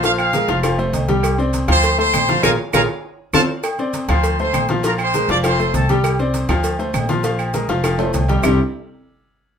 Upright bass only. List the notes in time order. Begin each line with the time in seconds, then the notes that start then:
Already playing: A#1
0.48 F1
0.93 C2
1.68 D2
2.13 A#1
2.43 A#1
2.74 A#1
3.33 F2
4.08 D2
4.53 A#1
5.28 F1
5.74 C2
6.49 D2
6.94 A#1
7.69 F1
8.14 C2
8.43 C2